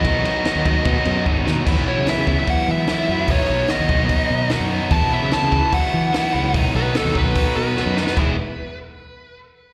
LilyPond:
<<
  \new Staff \with { instrumentName = "Lead electric guitar" } { \time 4/4 \key b \mixolydian \tempo 4 = 148 dis''2. r4 | r8 cis''8 e''8 e''8 fis''8 e''4. | cis''4 dis''2 r4 | a''8 e''8 a''4 fis''2 |
r8 b'8 a'8 b'4 b'4. | r1 | }
  \new Staff \with { instrumentName = "Overdriven electric guitar" } { \time 4/4 \key b \mixolydian <b, dis fis b dis'>8 <b, dis fis b dis'>8 <b, dis fis b dis'>8 <b, dis fis b dis'>8 <b, dis fis b dis'>8 <b, dis fis b dis'>8 <b, dis fis b dis'>8 <b, dis fis b dis'>8 | <e fis b e'>8 <fis b e'>8 <e fis b e'>8 <fis b e'>4. <e fis b e'>8 <fis b e'>8 | <b, dis fis b dis'>8 <fis b dis'>8 <b, dis fis b dis'>8 <fis b dis'>4. <dis fis b dis'>8 <fis b dis'>8 | <e fis b e'>8 <fis b e'>8 <e fis b e'>8 <fis b e'>4. <e fis b e'>8 <fis b e'>8 |
<b, dis fis b dis'>8 <fis b dis'>8 <b, dis fis b dis'>8 <fis b dis'>4. <dis fis b dis'>8 <fis b dis'>8 | <e gis b e'>8 r2. r8 | }
  \new Staff \with { instrumentName = "Fingered electric bass" } { \clef bass \time 4/4 \key b \mixolydian b,,8 r8. dis,8. b,16 r16 fis,8 gis,,8 dis,8 | e,16 b,,8 cis16 r16 cis8 r8. e8 r8 fis,8 | b,,16 r16 b,,8 r16 dis,16 b,,8 r8 b,8. fis,8 r16 | e,16 b,,8 cis16 r16 cis8 r8. e8 r8 cis,8 |
b,,16 r16 b,,8 r16 dis,16 b,,8 r8 b,8. fis,8 r16 | e,,8 r2. r8 | }
  \new DrumStaff \with { instrumentName = "Drums" } \drummode { \time 4/4 <bd cymr>8 cymr8 <cymr sn>8 <bd cymr>8 <bd cymr>8 cymr8 bd8 sn16 tomfh16 | <cymc bd>4 <hho sn>8 bd8 <hho bd>4 <hho sn>4 | <hho bd>4 <hho sn>8 bd8 <hho bd>4 <hho sn>4 | <hho bd>4 <hho sn>8 bd8 <hho bd>4 <hho sn>4 |
<hho bd>4 <hho sn>8 bd8 <hho bd>4 sn8 sn16 sn16 | <cymc bd>4 r4 r4 r4 | }
>>